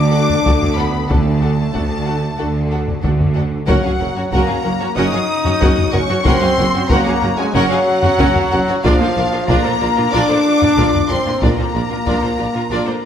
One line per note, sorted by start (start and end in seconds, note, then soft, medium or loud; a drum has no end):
0.00 0.29 D2 medium
0.00 0.37 D2 medium
0.00 0.37 D3 medium
0.00 0.62 D4 loud
0.00 0.76 D4 medium
0.00 0.77 D6 loud
0.11 0.21 D4 medium
0.11 0.22 F#4 medium
0.11 0.19 A4 medium
0.11 0.19 F#5 medium
0.30 taiko low medium
0.44 1.02 D2 medium
0.44 1.03 D2 medium
0.44 1.02 D3 medium
0.44 0.54 D4 medium
0.44 0.54 F#4 medium
0.44 0.52 A4 medium
0.44 0.53 F#5 medium
0.44 taiko medium
0.63 taiko low soft
0.76 1.09 B3 medium
0.76 1.10 B3 medium
0.76 0.85 D4 soft
0.76 0.85 F#4 soft
0.76 0.85 A4 medium
0.76 0.84 F#5 medium
0.76 1.10 B5 medium
1.08 1.67 D2 medium
1.08 1.66 D3 medium
1.08 3.03 A3 medium
1.08 3.04 A3 medium
1.08 1.18 D4 medium
1.08 1.18 F#4 soft
1.08 1.16 A4 medium
1.08 1.16 F#5 medium
1.08 3.03 A5 medium
1.08 taiko medium
1.41 1.50 D4 soft
1.41 1.50 F#4 medium
1.41 1.50 A4 medium
1.41 1.49 F#5 medium
1.73 2.31 D2 medium
1.73 2.31 D3 medium
1.73 1.82 D4 medium
1.73 1.82 F#4 medium
1.73 1.81 A4 soft
1.73 1.81 F#5 soft
1.73 taiko medium
2.05 2.15 D4 soft
2.05 2.15 F#4 soft
2.05 2.13 A4 soft
2.05 2.13 F#5 soft
2.38 2.96 D2 medium
2.38 2.95 D3 medium
2.38 2.47 D4 soft
2.38 2.47 F#4 medium
2.38 2.46 A4 medium
2.38 2.46 F#5 soft
2.70 2.80 D4 soft
2.70 2.80 F#4 soft
2.70 2.78 A4 soft
2.70 2.79 F#5 soft
2.88 taiko low medium
3.03 3.60 D2 medium
3.03 3.60 D3 medium
3.03 3.12 D4 medium
3.03 3.13 F#4 soft
3.03 3.11 A4 soft
3.03 3.11 F#5 soft
3.03 taiko medium
3.20 taiko low soft
3.35 3.44 D4 soft
3.35 3.44 F#4 soft
3.35 3.43 A4 soft
3.35 3.43 F#5 soft
3.66 3.74 F#1 medium
3.66 3.75 F#1 medium
3.66 3.74 F#2 medium
3.66 4.28 F#3 medium
3.66 4.29 F#3 medium
3.66 3.83 C#4 medium
3.66 3.83 F#4 medium
3.66 3.82 A#4 medium
3.66 3.82 F#5 medium
3.66 4.29 F#5 medium
3.66 taiko medium
3.83 3.90 F#2 medium
3.83 3.91 C#4 medium
3.83 3.91 F#4 medium
3.83 3.90 G#4 soft
3.83 3.90 F5 soft
3.98 4.07 F#1 medium
3.98 4.06 F#2 medium
3.98 4.07 C#4 soft
3.98 4.07 F#4 soft
3.98 4.06 A#4 soft
3.98 4.05 F#5 soft
4.15 4.22 F#2 soft
4.15 4.23 C#4 soft
4.15 4.22 F#4 medium
4.15 4.23 F#4 soft
4.15 4.22 C#5 soft
4.31 4.39 F#1 medium
4.31 4.39 F#2 medium
4.31 4.95 A#3 medium
4.31 4.96 A#3 medium
4.31 4.48 C#4 medium
4.31 4.48 F#4 medium
4.31 4.47 A#4 medium
4.31 4.47 F#5 medium
4.31 4.95 A#5 medium
4.31 taiko medium
4.47 4.54 F#2 medium
4.47 4.55 C#4 soft
4.47 4.55 F#4 medium
4.47 4.54 G#4 soft
4.47 4.54 F5 soft
4.63 4.71 F#1 medium
4.63 4.70 F#2 medium
4.63 4.71 C#4 medium
4.63 4.71 F#4 medium
4.63 4.70 A#4 medium
4.63 4.70 F#5 soft
4.79 4.87 F#2 medium
4.79 4.87 C#4 medium
4.79 4.86 F#4 medium
4.79 4.87 F#4 medium
4.79 4.86 C#5 medium
4.96 5.04 F#1 medium
4.96 5.03 F#2 medium
4.96 5.12 C#4 medium
4.96 5.93 D#4 loud
4.96 5.92 D#4 loud
4.96 5.12 F#4 medium
4.96 5.11 A#4 medium
4.96 5.11 F#5 medium
4.96 5.92 D#6 medium
5.11 5.19 F#2 medium
5.11 5.20 C#4 medium
5.11 5.20 F#4 medium
5.11 5.18 G#4 medium
5.11 5.18 F5 medium
5.45 5.51 F#2 medium
5.45 5.52 C#4 medium
5.45 5.51 F#4 medium
5.45 5.52 F#4 medium
5.45 5.51 C#5 medium
5.45 taiko low medium
5.60 5.68 F#1 medium
5.60 5.67 F#2 medium
5.60 5.76 C#4 medium
5.60 5.76 F#4 medium
5.60 5.75 A#4 medium
5.60 5.76 F#5 medium
5.60 taiko medium
5.78 taiko low soft
5.92 6.00 F#1 medium
5.92 5.99 F#2 medium
5.92 6.25 C#4 medium
5.92 6.26 C#4 medium
5.92 6.01 C#4 medium
5.92 6.01 F#4 medium
5.92 5.99 A#4 medium
5.92 5.99 F#5 medium
5.92 6.26 C#6 loud
6.09 6.15 F#2 medium
6.09 6.17 C#4 medium
6.09 6.16 F#4 medium
6.09 6.17 F#4 medium
6.09 6.16 C#5 medium
6.22 6.32 F#1 medium
6.22 6.32 F#2 medium
6.22 6.87 C4 medium
6.22 6.88 C4 loud
6.22 6.41 C#4 medium
6.22 6.41 F#4 medium
6.22 6.40 A#4 medium
6.22 6.40 F#5 loud
6.22 6.90 C6 loud
6.22 taiko loud
6.41 6.48 F#2 medium
6.41 6.49 C#4 medium
6.41 6.49 F#4 medium
6.41 6.48 G#4 medium
6.41 6.48 F5 medium
6.57 6.65 F#1 medium
6.57 6.63 F#2 medium
6.57 6.65 C#4 medium
6.57 6.65 F#4 medium
6.57 6.64 A#4 medium
6.57 6.64 F#5 medium
6.74 6.81 F#2 medium
6.74 6.81 C#4 medium
6.74 6.81 F#4 medium
6.74 6.81 C#5 medium
6.89 6.97 F#1 loud
6.89 6.98 F#1 loud
6.89 6.97 F#2 medium
6.89 7.38 A#3 loud
6.89 7.38 A#3 medium
6.89 7.05 C#4 loud
6.89 7.05 F#4 loud
6.89 7.05 A#4 medium
6.89 7.05 F#5 loud
6.89 7.38 A#5 loud
6.89 taiko medium
7.05 7.13 F#2 medium
7.05 7.13 C#4 medium
7.05 7.13 F#4 medium
7.05 7.12 G#4 medium
7.05 7.12 F5 medium
7.21 7.30 F#1 medium
7.21 7.30 F#2 medium
7.21 7.29 C#4 medium
7.21 7.29 F#4 medium
7.21 7.28 A#4 medium
7.21 7.28 F#5 medium
7.38 7.46 F#2 medium
7.38 7.54 G#3 medium
7.38 7.45 C#4 medium
7.38 7.44 F#4 medium
7.38 7.45 F#4 medium
7.38 7.44 C#5 medium
7.38 7.55 G#5 loud
7.53 7.61 F#1 loud
7.53 7.62 F#1 medium
7.53 7.62 F#2 loud
7.53 8.83 F#3 loud
7.53 8.84 F#3 loud
7.53 7.69 C#4 loud
7.53 7.70 F#4 medium
7.53 7.70 A#4 loud
7.53 8.83 F#5 loud
7.53 7.70 F#5 loud
7.71 7.78 F#2 medium
7.71 7.78 C#4 medium
7.71 7.78 F#4 medium
7.71 7.77 G#4 medium
7.71 7.77 F5 medium
8.03 8.09 F#2 medium
8.03 8.10 C#4 medium
8.03 8.10 F#4 medium
8.03 8.10 C#5 medium
8.03 taiko low medium
8.18 8.26 F#1 loud
8.18 8.27 F#1 loud
8.18 8.26 F#2 loud
8.18 8.34 C#4 loud
8.18 8.34 F#4 medium
8.18 8.33 A#4 medium
8.18 8.34 F#5 loud
8.18 taiko medium
8.36 taiko low medium
8.51 8.59 F#1 medium
8.51 8.59 F#2 medium
8.51 8.58 C#4 medium
8.51 8.59 F#4 medium
8.51 8.58 A#4 medium
8.51 8.58 F#5 medium
8.67 8.74 F#2 medium
8.67 8.74 C#4 medium
8.67 8.74 F#4 medium
8.67 8.75 C#5 medium
8.83 8.91 A#1 loud
8.83 8.90 A#2 loud
8.83 9.47 F3 loud
8.83 9.47 F3 medium
8.83 8.99 D4 medium
8.83 8.99 F4 medium
8.83 8.99 A#4 medium
8.83 8.99 D5 medium
8.83 9.46 F5 loud
8.83 taiko loud
9.00 9.07 A#2 medium
9.00 9.06 D4 medium
9.00 9.06 F4 medium
9.00 9.07 A4 medium
9.00 9.07 C5 medium
9.16 9.23 A#1 medium
9.16 9.23 A#2 medium
9.16 9.22 D4 medium
9.16 9.22 F4 medium
9.16 9.23 A#4 medium
9.16 9.23 D5 medium
9.31 9.39 A#2 medium
9.31 9.38 D4 medium
9.31 9.38 F4 medium
9.31 9.39 A#4 medium
9.47 9.55 A#1 loud
9.47 9.56 A#1 loud
9.47 9.55 A#2 medium
9.47 10.13 A#3 medium
9.47 10.13 A#3 loud
9.47 9.62 D4 medium
9.47 9.63 F4 medium
9.47 9.63 A#4 medium
9.47 9.63 D5 medium
9.47 10.12 A#5 loud
9.47 taiko medium
9.63 9.72 A#2 medium
9.63 9.70 D4 medium
9.63 9.70 F4 medium
9.63 9.70 A4 medium
9.63 9.70 C5 medium
9.80 9.88 A#1 medium
9.80 9.88 A#2 medium
9.80 9.87 D4 medium
9.80 9.87 F4 medium
9.80 9.87 A#4 medium
9.80 9.87 D5 medium
9.96 10.04 A#2 medium
9.96 10.03 D4 medium
9.96 10.03 F4 medium
9.96 10.02 A#4 medium
10.12 10.20 A#1 medium
10.12 10.21 A#2 medium
10.12 11.09 D4 loud
10.12 10.28 D4 medium
10.12 11.09 D4 loud
10.12 10.28 F4 medium
10.12 10.27 A#4 loud
10.12 10.27 D5 loud
10.12 11.09 D6 loud
10.28 10.36 A#2 medium
10.28 10.35 D4 medium
10.28 10.36 F4 medium
10.28 10.35 A4 medium
10.28 10.35 C5 medium
10.60 10.68 A#2 medium
10.60 10.68 D4 medium
10.60 10.67 F4 medium
10.60 10.68 F4 medium
10.60 10.67 A#4 medium
10.60 taiko low medium
10.77 10.84 A#1 medium
10.77 10.85 A#2 medium
10.77 10.92 D4 medium
10.77 10.92 F4 medium
10.77 10.92 A#4 medium
10.77 10.92 D5 medium
10.77 taiko medium
10.94 taiko low medium
11.09 11.16 A#1 soft
11.09 11.17 A#1 medium
11.09 11.17 A#2 soft
11.09 11.42 C4 medium
11.09 11.43 C4 medium
11.09 11.16 D4 medium
11.09 11.16 F4 medium
11.09 11.15 A#4 medium
11.09 11.16 D5 medium
11.09 11.42 C6 medium
11.26 11.33 A#2 soft
11.26 11.32 D4 medium
11.26 11.32 F4 soft
11.26 11.32 F4 medium
11.26 11.32 A#4 medium
11.40 11.49 A#1 medium
11.40 11.50 A#2 medium
11.40 13.05 A#3 medium
11.40 11.57 D4 medium
11.40 11.57 F4 medium
11.40 11.57 A#4 medium
11.40 11.56 D5 medium
11.40 13.05 A#5 medium
11.40 taiko medium
11.45 13.05 A#3 medium
11.58 11.65 A#2 medium
11.58 11.64 D4 soft
11.58 11.64 F4 soft
11.58 11.64 A4 soft
11.58 11.64 C5 soft
11.74 11.81 A#1 medium
11.74 11.81 A#1 soft
11.74 11.82 A#2 medium
11.74 11.81 D4 soft
11.74 11.81 F4 soft
11.74 11.81 A#4 soft
11.74 11.81 D5 soft
11.89 11.97 A#2 soft
11.89 11.96 D4 soft
11.89 11.96 F4 medium
11.89 11.97 F4 soft
11.89 11.96 A#4 soft
12.05 12.13 A#1 medium
12.05 12.14 A#2 medium
12.05 12.21 D4 medium
12.05 12.21 F4 medium
12.05 12.21 A#4 medium
12.05 12.21 D5 medium
12.05 taiko medium
12.21 12.29 A#2 soft
12.21 12.29 D4 soft
12.21 12.29 F4 soft
12.21 12.28 A4 medium
12.21 12.29 C5 soft
12.38 12.46 A#1 soft
12.38 12.45 A#2 soft
12.38 12.45 D4 soft
12.38 12.45 F4 medium
12.38 12.45 A#4 medium
12.38 12.45 D5 soft
12.54 12.61 A#2 soft
12.54 12.61 D4 medium
12.54 12.61 F4 medium
12.54 12.60 A#4 medium
12.70 12.77 A#1 medium
12.70 12.78 A#1 medium
12.70 12.78 A#2 medium
12.70 12.86 D4 medium
12.70 12.85 F4 medium
12.70 12.85 A#4 medium
12.70 12.86 D5 medium
12.86 12.93 A#2 soft
12.86 12.93 D4 medium
12.86 12.93 F4 soft
12.86 12.93 A4 soft
12.86 12.93 C5 soft